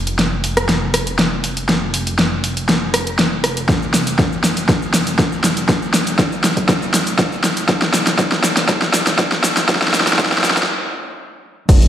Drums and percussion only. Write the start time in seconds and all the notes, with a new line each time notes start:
0.07 closed hi-hat
0.19 snare, closed hi-hat
0.44 open hi-hat
0.57 cross-stick, closed hi-hat
0.69 snare, closed hi-hat
0.94 cross-stick, open hi-hat
1.07 closed hi-hat
1.19 snare, closed hi-hat
1.44 open hi-hat
1.57 closed hi-hat
1.69 snare, closed hi-hat
1.94 open hi-hat
2.07 closed hi-hat
2.19 snare, closed hi-hat
2.44 open hi-hat
2.57 closed hi-hat
2.69 snare, closed hi-hat
2.94 cross-stick, open hi-hat
3.07 closed hi-hat
3.19 snare, closed hi-hat
3.44 cross-stick, open hi-hat
3.57 closed hi-hat
3.69 kick, snare, closed hi-hat, shaker
3.82 shaker
3.94 snare, open hi-hat, shaker
4.07 closed hi-hat, shaker
4.19 kick, snare, closed hi-hat, shaker
4.32 shaker
4.44 snare, open hi-hat, shaker
4.57 closed hi-hat, shaker
4.69 kick, snare, closed hi-hat, shaker
4.82 shaker
4.94 snare, open hi-hat, shaker
5.07 closed hi-hat, shaker
5.19 kick, snare, closed hi-hat, shaker
5.32 shaker
5.44 snare, open hi-hat, shaker
5.57 closed hi-hat, shaker
5.69 kick, snare, closed hi-hat, shaker
5.82 shaker
5.94 snare, open hi-hat, shaker
6.07 closed hi-hat, shaker
6.19 kick, snare, closed hi-hat, shaker
6.32 shaker
6.44 snare, open hi-hat, shaker
6.57 kick, closed hi-hat, shaker
6.69 kick, snare, closed hi-hat, shaker
6.82 shaker
6.94 snare, open hi-hat, shaker
7.07 closed hi-hat, shaker
7.19 kick, snare, closed hi-hat, shaker
7.32 shaker
7.44 snare, open hi-hat, shaker
7.57 closed hi-hat, shaker
7.69 kick, snare, closed hi-hat, shaker
7.82 snare, shaker
7.94 snare, open hi-hat, shaker
8.07 snare, closed hi-hat, shaker
8.19 kick, snare, closed hi-hat, shaker
8.32 snare, shaker
8.44 snare, open hi-hat, shaker
8.57 snare, closed hi-hat, shaker
8.69 kick, snare, closed hi-hat, shaker
8.82 snare, shaker
8.94 snare, open hi-hat, shaker
9.07 snare, closed hi-hat, shaker
9.19 kick, snare, closed hi-hat, shaker
9.32 snare, shaker
9.44 snare, open hi-hat, shaker
9.57 snare, closed hi-hat, shaker
9.69 kick, snare, closed hi-hat, shaker
9.75 snare
9.82 snare, shaker
9.88 snare
9.94 snare, open hi-hat, shaker
10.00 snare
10.07 snare, closed hi-hat, shaker
10.13 snare
10.19 kick, snare, closed hi-hat, shaker
10.26 snare
10.32 snare, shaker
10.38 snare
10.44 snare, open hi-hat, shaker
10.51 snare
10.57 kick, snare, closed hi-hat, shaker
10.63 snare
11.69 kick, closed hi-hat, crash, shaker
11.82 closed hi-hat, shaker